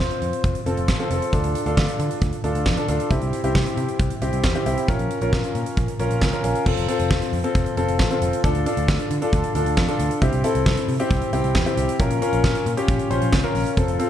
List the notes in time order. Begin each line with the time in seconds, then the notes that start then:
Already playing: C4 F4 C5
0.11 closed hi-hat
0.22 F2, closed hi-hat
0.33 closed hi-hat
0.44 F1, kick, closed hi-hat
0.55 closed hi-hat
0.66 F1 C4 F4 A4, closed hi-hat
0.77 F1, closed hi-hat
0.88 A1, kick, snare
0.99 C4 F4 A4, closed hi-hat
1.10 F1 C4 F4 A4, closed hi-hat
1.22 closed hi-hat
1.33 D2 D4 F4 A4, kick, closed hi-hat
1.44 D2, closed hi-hat
1.55 closed hi-hat
1.66 D2 D4 F4 A4, closed hi-hat
1.77 D2, kick, snare
1.88 closed hi-hat
1.99 D3, closed hi-hat
2.11 closed hi-hat
2.22 D2, kick, closed hi-hat
2.33 closed hi-hat
2.44 D2 D4 F4 A4, closed hi-hat
2.55 D2, closed hi-hat
2.66 F2, kick, snare
2.77 D4 F4 A4, closed hi-hat
2.88 D2 D4 F4 A4, closed hi-hat
3.00 closed hi-hat
3.11 C2 C4 E4 G4, kick, closed hi-hat
3.22 C2, closed hi-hat
3.33 closed hi-hat
3.44 C2 C4 E4 G4, closed hi-hat
3.55 C2, kick, snare
3.66 closed hi-hat
3.77 C3, closed hi-hat
3.89 closed hi-hat
3.99 C2, kick, closed hi-hat
4.10 closed hi-hat
4.22 C2 C4 E4 G4, closed hi-hat
4.33 C2, closed hi-hat
4.44 E2, kick, snare
4.55 C4 E4 G4, closed hi-hat
4.66 C2 C4 E4 G4, closed hi-hat
4.78 closed hi-hat
4.88 A#1 C#4 F4 A#4, kick, closed hi-hat
4.99 A#1, closed hi-hat
5.11 closed hi-hat
5.21 A#1 C#4 F4 A#4, closed hi-hat
5.33 kick, snare
5.44 closed hi-hat
5.55 A#2, closed hi-hat
5.66 closed hi-hat
5.77 A#1, kick, closed hi-hat
5.88 closed hi-hat
5.99 A#1 C#4 F4 A#4, closed hi-hat
6.11 A#1, closed hi-hat
6.21 C#2, kick, snare
6.33 C#4 F4 A#4, closed hi-hat
6.44 A#1 C#4 F4 A#4, closed hi-hat
6.55 closed hi-hat
6.66 F1 C4 F4 A4, kick, crash
6.77 F1, closed hi-hat
6.88 C4 F4 A4, closed hi-hat
6.99 F1, closed hi-hat
7.11 F1, kick, snare
7.22 closed hi-hat
7.33 F2, open hi-hat
7.44 C4 F4 A4, closed hi-hat
7.55 F1, kick, closed hi-hat
7.66 closed hi-hat
7.77 F1 C4 F4 A4, closed hi-hat
7.88 F1, closed hi-hat
7.99 A1, kick, snare
8.11 C4 F4 A4, closed hi-hat
8.22 F1, closed hi-hat
8.33 closed hi-hat
8.44 D2 D4 F4 A4, kick, closed hi-hat
8.55 D2, closed hi-hat
8.66 D4 F4 A4, closed hi-hat
8.77 D2, closed hi-hat
8.88 D2, kick, snare
8.99 closed hi-hat
9.11 D3, closed hi-hat
9.22 D4 F4 A4, closed hi-hat
9.33 D2, kick, closed hi-hat
9.44 closed hi-hat
9.55 D2 D4 F4 A4, closed hi-hat
9.66 D2, closed hi-hat
9.77 F2, kick, snare
9.88 D4 F4 A4, closed hi-hat
9.99 D2, closed hi-hat
10.11 closed hi-hat
10.22 C2 C4 E4 G4, kick, closed hi-hat
10.33 C2, closed hi-hat
10.44 C4 E4 A4, closed hi-hat
10.55 C2, closed hi-hat
10.66 C2, kick, snare
10.77 closed hi-hat
10.88 C3, open hi-hat
11.00 C4 E4 G4, closed hi-hat
11.10 C2, kick, closed hi-hat
11.22 closed hi-hat
11.33 C2 C4 E4 G4, closed hi-hat
11.44 C2, closed hi-hat
11.55 E2, kick, snare
11.66 C4 E4 G4, closed hi-hat
11.77 C2, closed hi-hat
11.89 closed hi-hat
11.99 A#1 C#4 F4 A#4, kick, closed hi-hat
12.11 A#1, closed hi-hat
12.22 C#4 F4 A#4, closed hi-hat
12.33 A#1, closed hi-hat
12.44 A#1, kick, snare
12.55 closed hi-hat
12.66 A#2, closed hi-hat
12.77 C#4 F4 G4, closed hi-hat
12.88 A#1, kick, closed hi-hat
12.99 closed hi-hat
13.11 A#1 C#4 F4 C5, closed hi-hat
13.22 A#1, closed hi-hat
13.33 C#2, kick, snare
13.44 C#4 F4 A#4, closed hi-hat
13.55 A#1, open hi-hat
13.66 closed hi-hat
13.77 F1 C4 F4 A4, kick, closed hi-hat
13.88 F1, closed hi-hat
13.99 C4 F4 A4, closed hi-hat